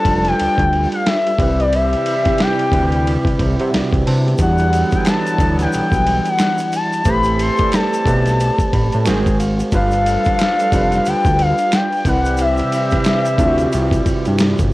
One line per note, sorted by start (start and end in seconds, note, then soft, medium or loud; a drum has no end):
0.00 1.01 F3 medium
0.00 0.05 G3 medium
0.00 4.35 G3 medium
0.00 1.02 A3 medium
0.00 0.06 D4 medium
0.00 1.02 D4 medium
0.00 1.37 D4 medium
0.00 0.07 F4 medium
0.00 1.37 F4 medium
0.00 1.02 A4 medium
0.00 1.37 B4 medium
0.00 1.40 B4 loud
0.00 0.27 A5 loud
0.05 0.34 F1 medium
0.05 1.26 G3 medium
0.05 1.26 D4 medium
0.05 1.27 F4 medium
0.05 1.27 A4 medium
0.05 kick loud
0.05 ride medium
0.25 0.89 G5 loud
0.25 snare soft
0.25 ride soft
0.39 0.48 D2 medium
0.39 ride medium
0.58 0.87 D2 medium
0.58 kick loud
0.58 ride soft
0.73 ride medium
0.92 1.08 F5 medium
0.92 ride soft
1.06 1.62 E5 loud
1.06 snare loud
1.06 ride medium
1.27 ride soft
1.39 1.95 C2 medium
1.39 2.14 C3 medium
1.39 4.36 C3 medium
1.39 4.01 E3 medium
1.39 4.01 G3 medium
1.39 4.02 C4 medium
1.39 2.14 C4 medium
1.39 4.36 E4 medium
1.39 2.15 E4 medium
1.39 4.01 G4 medium
1.39 4.36 B4 medium
1.39 2.15 B4 medium
1.39 kick loud
1.39 ride medium
1.60 1.76 D5 medium
1.60 ride soft
1.73 2.43 E5 loud
1.73 ride medium
1.93 ride soft
2.06 ride medium
2.25 2.67 C3 medium
2.25 2.68 C4 medium
2.25 2.68 E4 medium
2.25 2.69 G4 medium
2.25 kick medium
2.25 snare soft
2.25 ride soft
2.38 3.07 G5 loud
2.38 snare loud
2.38 ride medium
2.59 ride soft
2.71 3.17 D2 loud
2.71 3.92 C3 medium
2.71 3.39 C4 medium
2.71 3.40 E4 medium
2.71 3.40 B4 medium
2.71 kick medium
2.71 ride medium
2.92 ride soft
3.07 ride medium
3.25 kick loud
3.25 ride soft
3.39 3.56 C2 medium
3.39 3.58 E5 medium
3.39 kick loud
3.39 ride soft
3.59 3.71 C3 medium
3.59 3.72 G4 soft
3.59 3.72 E5 medium
3.59 3.72 F#5 medium
3.59 ride soft
3.73 3.82 C2 soft
3.73 3.92 F#4 medium
3.73 3.92 D5 medium
3.73 4.04 G5 medium
3.73 snare loud
3.73 ride medium
3.93 4.04 C2 medium
3.93 4.06 E4 medium
3.93 4.06 C5 medium
3.93 kick loud
3.93 ride soft
4.07 4.35 C3 loud
4.07 4.25 D4 medium
4.07 4.25 B4 medium
4.07 4.37 A5 medium
4.07 open hi-hat soft
4.07 ride medium
4.27 4.58 B3 medium
4.27 4.58 G4 medium
4.27 ride soft
4.38 4.84 E2 loud
4.38 6.68 D3 medium
4.38 7.03 E3 medium
4.38 5.29 E3 loud
4.38 6.68 F#3 medium
4.38 5.31 G3 loud
4.38 6.68 B3 medium
4.38 7.02 D4 medium
4.38 5.30 D4 medium
4.38 7.03 E4 medium
4.38 5.30 F#4 medium
4.38 4.97 F#5 medium
4.38 kick loud
4.38 ride medium
4.38 shaker medium
4.58 ride soft
4.58 shaker soft
4.73 ride medium
4.73 shaker medium
4.91 kick medium
4.91 ride soft
4.91 shaker soft
4.95 5.07 G5 medium
5.05 5.57 A5 loud
5.05 finger snap medium
5.05 snare loud
5.05 ride medium
5.05 shaker medium
5.27 ride soft
5.27 shaker medium
5.39 5.67 D2 medium
5.39 6.59 E3 medium
5.39 6.61 G3 medium
5.39 6.60 D4 medium
5.39 6.60 E4 medium
5.39 kick loud
5.39 ride medium
5.39 shaker medium
5.59 6.30 G5 loud
5.59 snare soft
5.59 ride soft
5.59 shaker soft
5.72 5.82 B1 medium
5.72 ride medium
5.72 shaker medium
5.92 6.20 B1 medium
5.92 kick medium
5.92 ride soft
5.92 shaker soft
6.07 ride medium
6.25 6.74 F#5 loud
6.25 ride soft
6.25 shaker soft
6.39 finger snap medium
6.39 snare loud
6.39 ride medium
6.39 shaker medium
6.58 ride soft
6.58 shaker medium
6.72 7.11 A5 loud
6.72 ride medium
6.72 shaker medium
6.93 ride soft
6.93 shaker soft
7.05 7.51 A1 loud
7.05 8.69 E3 medium
7.05 7.52 A3 loud
7.05 9.04 A3 medium
7.05 8.69 A3 medium
7.05 9.70 C4 medium
7.05 8.69 C4 medium
7.05 7.52 G4 medium
7.05 8.69 A4 medium
7.05 7.53 B4 medium
7.05 7.53 C5 loud
7.05 kick loud
7.05 ride medium
7.05 shaker medium
7.09 7.43 B5 loud
7.24 ride soft
7.24 shaker soft
7.39 7.75 C6 loud
7.39 ride medium
7.39 shaker medium
7.57 8.00 A3 medium
7.57 8.01 G4 medium
7.57 8.02 B4 medium
7.57 kick medium
7.57 ride soft
7.57 shaker soft
7.61 8.02 D5 medium
7.72 9.06 A5 loud
7.72 finger snap medium
7.72 snare loud
7.72 ride medium
7.72 shaker medium
7.93 ride soft
7.93 shaker medium
8.05 8.51 B1 loud
8.05 9.05 A3 medium
8.05 9.06 G4 medium
8.05 9.07 B4 medium
8.05 9.07 D5 medium
8.05 kick loud
8.05 ride medium
8.05 shaker medium
8.26 snare soft
8.26 ride soft
8.26 shaker soft
8.40 ride medium
8.40 shaker medium
8.59 kick loud
8.59 ride soft
8.59 shaker soft
8.73 8.90 A1 loud
8.73 8.91 B5 medium
8.73 kick loud
8.73 ride medium
8.92 9.09 A2 medium
8.92 9.05 A5 medium
8.92 ride soft
8.92 shaker soft
9.05 9.63 G#1 medium
9.05 9.38 D#3 medium
9.05 9.65 G#3 loud
9.05 9.39 G#3 medium
9.05 9.72 G#3 medium
9.05 9.39 C4 medium
9.05 9.66 F#4 medium
9.05 9.72 F#4 medium
9.05 9.39 G#4 medium
9.05 9.66 A#4 medium
9.05 9.67 C5 loud
9.05 9.37 G#5 medium
9.05 finger snap medium
9.05 snare loud
9.05 ride medium
9.05 shaker medium
9.26 kick medium
9.26 ride soft
9.26 shaker medium
9.40 9.70 F5 medium
9.40 ride medium
9.40 shaker medium
9.59 ride soft
9.59 shaker medium
9.72 10.17 G1 loud
9.72 11.69 F3 medium
9.72 10.63 G3 medium
9.72 14.73 G3 medium
9.72 11.69 A3 medium
9.72 10.63 D4 medium
9.72 11.69 D4 medium
9.72 12.05 D4 medium
9.72 10.63 F4 medium
9.72 12.04 F4 medium
9.72 11.69 A4 medium
9.72 12.04 B4 medium
9.72 10.64 B4 loud
9.72 11.09 F5 loud
9.72 kick loud
9.72 ride medium
9.72 shaker medium
9.91 ride soft
9.91 shaker soft
10.06 ride medium
10.06 shaker medium
10.24 kick medium
10.24 ride soft
10.24 shaker soft
10.39 finger snap medium
10.39 snare loud
10.39 ride medium
10.39 shaker medium
10.59 ride soft
10.59 shaker medium
10.72 11.01 F1 loud
10.72 11.93 G3 medium
10.72 11.93 D4 medium
10.72 11.94 F4 medium
10.72 11.94 B4 loud
10.72 kick loud
10.72 ride medium
10.72 shaker medium
10.92 snare soft
10.92 ride soft
10.92 shaker medium
11.05 11.15 D2 medium
11.05 11.43 G5 loud
11.05 ride medium
11.05 shaker medium
11.25 11.53 D2 medium
11.25 kick loud
11.25 ride soft
11.25 shaker soft
11.39 11.76 F5 loud
11.39 ride medium
11.58 ride soft
11.58 shaker soft
11.72 12.09 G5 loud
11.72 finger snap medium
11.72 snare loud
11.72 ride medium
11.72 shaker medium
11.92 ride soft
11.92 shaker medium
12.05 12.62 C2 loud
12.05 12.80 C3 medium
12.05 14.73 C3 medium
12.05 14.68 E3 medium
12.05 14.68 G3 medium
12.05 14.68 C4 medium
12.05 12.81 C4 medium
12.05 14.73 E4 medium
12.05 12.81 E4 medium
12.05 14.68 G4 medium
12.05 14.73 B4 medium
12.05 12.82 B4 loud
12.05 12.42 F#5 loud
12.05 kick loud
12.05 ride medium
12.05 shaker medium
12.25 ride soft
12.25 shaker medium
12.37 14.40 E5 loud
12.37 ride medium
12.37 shaker medium
12.57 ride soft
12.57 shaker soft
12.72 ride medium
12.72 shaker medium
12.90 13.33 C3 medium
12.90 13.34 C4 medium
12.90 13.34 E4 medium
12.90 13.35 B4 medium
12.90 kick medium
12.90 snare soft
12.90 ride soft
12.90 shaker soft
13.04 finger snap medium
13.04 snare loud
13.04 ride medium
13.04 shaker medium
13.25 ride soft
13.25 shaker medium
13.38 13.67 D2 loud
13.38 14.59 C3 medium
13.38 14.59 C4 medium
13.38 14.60 E4 medium
13.38 13.48 F4 medium
13.38 kick loud
13.38 ride medium
13.38 shaker medium
13.47 14.64 F#4 loud
13.58 ride soft
13.58 shaker soft
13.72 14.01 C2 loud
13.72 ride medium
13.72 shaker medium
13.91 kick medium
13.91 ride soft
13.91 shaker soft
14.06 14.14 G2 soft
14.06 kick medium
14.06 ride soft
14.06 shaker medium
14.25 14.55 G2 medium
14.25 ride soft
14.25 shaker soft
14.39 finger snap medium
14.39 snare loud
14.39 ride medium
14.39 shaker medium
14.59 14.71 G1 medium
14.59 kick loud
14.59 ride soft
14.59 shaker medium